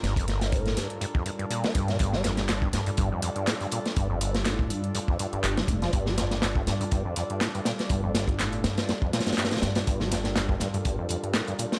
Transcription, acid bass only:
X:1
M:4/4
L:1/16
Q:"Swing 16ths" 1/4=122
K:Gm
V:1 name="Acid bass" clef=bass
G,, F,, G,,,2 A,,2 G,, z G,, F,, G,, G,, B,, B, G,, B,, | G,, G, F,, G,, F,, G,, G,, G,, G,, F,, F,, G,, A,, G,, B,, z | G,, F,, G,,,2 A,,2 G,, z G,, F,, G,, G,,2 G, G,, F, | G,, G, F,, G,, F,, G,, G,, G,, G,, F,, F,, G,, A,, G,, B,, z |
G,, F,, G,,,2 A,,2 G,, z G,, F,, B,, G,, G,, B,, G,, A,, | G,, G, F,, G,, F,, G,, G,, G,, G,, F,, F,, G,, A,, G,, B,, z |]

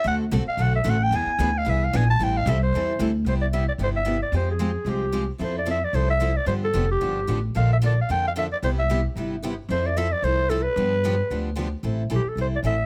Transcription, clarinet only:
X:1
M:4/4
L:1/16
Q:"Swing" 1/4=224
K:Am
V:1 name="Clarinet"
^f2 z4 =f2 ^f2 e2 f2 g2 | ^g6 f2 e2 f2 g2 a2 | g2 f2 e2 c8- c z | [K:C] c2 d2 e2 d2 c2 e4 d2 |
c2 _A6 G6 z2 | c2 d2 e2 d2 c2 e4 d2 | c2 A4 G8 z2 | f2 e2 d2 f2 g2 f2 e2 d2 |
c2 e4 z8 z2 | c2 d2 e2 d2 c4 A2 B2- | B12 z4 | [K:Am] z4 G2 A2 c2 d2 e4 |]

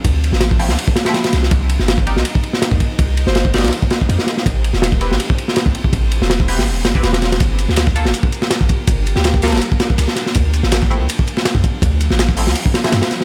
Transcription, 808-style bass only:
X:1
M:4/4
L:1/16
Q:"Swing 16ths" 1/4=163
K:Gm
V:1 name="808-style bass" clef=bass
D,,3 A,,,4 D,, z6 C,,2 | C,,3 G,,,4 C,, z4 z E,, z2 | C,,3 G,,,4 C,, z4 F,, z3 | A,,,3 =E,,,4 A,,, z4 z C,, z2 |
A,,,3 =E,,,4 A,,, E,,,2 G,,,2 E,,,4 | G,,,3 D,,4 G,,, z4 z B,,, z2 | G,,,3 D,,4 G,,, z4 C,, z3 | D,,3 A,,,4 D,, z4 z F,, z2 |
D,,3 A,,,4 D,, z4 G,, z3 |]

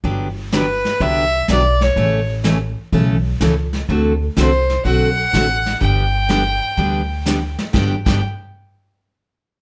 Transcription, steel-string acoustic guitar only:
X:1
M:4/4
L:1/8
Q:"Swing" 1/4=125
K:G
V:1 name="Steel-string acoustic guitar"
[D,F,B,DG] z [D,F,B,DG] z [D,F,B,DG] z [D,F,B,DG] z | [^C,E,A,^CA] z [C,E,A,CA] z [C,E,A,CA] z [C,E,A,CA] z | [D,A,CFA] z [D,A,CFA] z [D,A,CFA] z [D,A,CFA] z | [D,G,B,DG] z [D,G,B,DG] z [D,G,B,DG] z [D,G,B,DG] z |
[G,,D,G,B,DG] [G,,D,G,B,DG] z6 |]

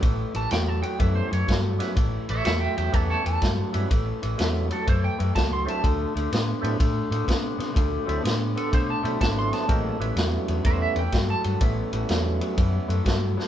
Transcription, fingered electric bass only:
X:1
M:4/4
L:1/8
Q:"Swing" 1/4=124
K:Amix
V:1 name="Fingered electric bass" clef=bass
A,,, A,,, E,,2 F,, F,, G,,2 | A,,, A,,, E,, E,, E,, E,, G,, G,, | A,,, A,,, E,,2 F,, F,, C,,2 | D,, D,, A,, A,, A,, A,, =C, C, |
D,, D,, A,,2 B,, B,, ^G,,,2 | A,,, A,,, E,, E,, E,, E,, G,, G,, | A,,, A,,, E,,2 F,, F,, G,,2 |]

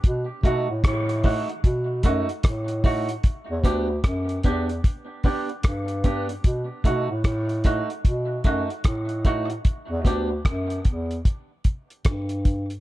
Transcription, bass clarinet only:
X:1
M:4/4
L:1/16
Q:"Swing 16ths" 1/4=75
K:Em
V:1 name="Bass clarinet" clef=bass
B,, z B,, A,, A,,3 z B,,2 F,, z A,,4 | z E,, D,,2 F,,2 E,,2 z4 G,,4 | B,, z B,, A,, A,,3 z B,,2 F,, z A,,4 | z E,, D,,2 F,,2 E,,2 z4 G,,4 |]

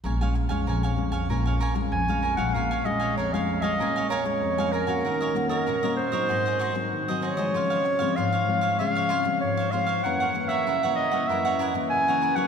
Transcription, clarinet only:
X:1
M:4/4
L:1/16
Q:1/4=96
K:Bbm
V:1 name="Clarinet"
z12 a3 g | f2 e2 d f2 e3 d4 B2- | B3 B3 c6 z2 d2- | d4 f4 f4 d2 f2 |
g3 _f3 e2 f2 z2 a3 g |]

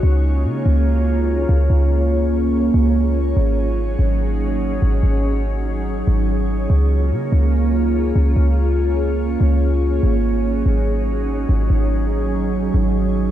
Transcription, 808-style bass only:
X:1
M:4/4
L:1/8
Q:1/4=144
K:Db
V:1 name="808-style bass" clef=bass
D,,2 D, D,,4 D,, | D,,4- D,, D,,3 | A,,,3 A,,,4 A,,, | A,,,4- A,,, A,,,3 |
D,,2 D, D,,4 D,, | D,,4- D,, D,,3 | A,,,3 A,,,4 A,,, | A,,,4- A,,, A,,,3 |]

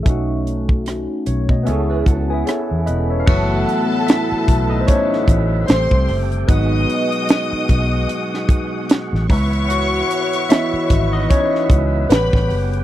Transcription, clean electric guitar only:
X:1
M:4/4
L:1/16
Q:"Swing 16ths" 1/4=75
K:F#dor
V:1 name="Clean electric guitar"
z8 [Ac] [GB] [FA] [EG]4- [EG] | z16 | z16 | z16 |]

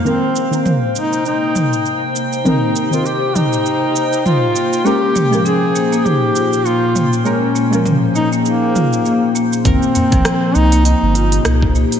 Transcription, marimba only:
X:1
M:4/4
L:1/16
Q:"Swing 16ths" 1/4=100
K:Cphr
V:1 name="Marimba"
z16 | z16 | B, z B, F, D2 B, B, E z F2 B,2 B, z | B, z B, F, D2 B, B, E z F2 B,2 B, z |
B, z B, F, C2 B, B, E z F2 B,2 B, z |]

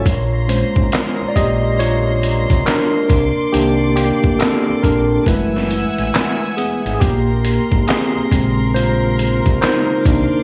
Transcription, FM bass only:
X:1
M:4/4
L:1/16
Q:"Swing 16ths" 1/4=69
K:Cphr
V:1 name="FM bass" clef=bass
B,,,3 A,,, z B,,, B,,,4- B,,, C,, z2 C,, z | C,,3 =A,,, z B,,, B,,,2 _G,,,3 A,,, z3 _A,,, | B,,,3 A,,, z B,,, B,,,4- B,,, C,, z2 C,, z |]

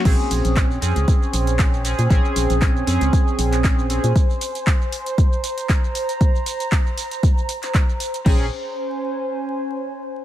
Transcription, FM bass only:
X:1
M:4/4
L:1/16
Q:"Swing 16ths" 1/4=117
K:Bbm
V:1 name="FM bass" clef=bass
B,,, z B,,, B,,,3 F,, D,, z2 B,,,4- B,,, B,, | B,,, z B,,, B,,,3 F,, D,, z2 B,,,4- B,,, B,, | z16 | z16 |
B,,,2 z12 z2 |]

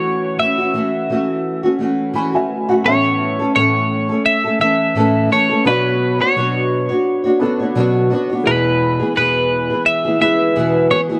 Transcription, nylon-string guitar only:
X:1
M:4/4
L:1/16
Q:"Swing 16ths" 1/4=86
K:A
V:1 name="Nylon-string guitar"
[E,A,CF]2 [E,A,CF] [A,CF] [E,A,CF]2 [E,A,CF]3 [A,CF] [E,A,CF]2 [E,A,CF] [A,CF]2 [A,CF] | [A,,E,A,CA]3 [A,CA] [A,,E,A,CA]3 [A,CA]2 [A,CA] [E,A,CA]2 [A,,E,A,CA]2 [E,A,CA] [A,CA] | [B,,F,B,DFc]3 [B,DFc] [B,,F,B,DFc]3 [B,DFc]2 [B,DFc] [B,DFc] [B,DFc] [B,,F,B,DFc]2 [B,DFc] [B,DFc] | [E,,B,,E,B,EG]3 [E,B,EG] [E,,B,,E,B,EG]3 [E,B,EG]2 [E,B,EG] [E,B,EG]2 [E,,B,,E,B,EG]2 [E,B,EG] [E,B,EG] |]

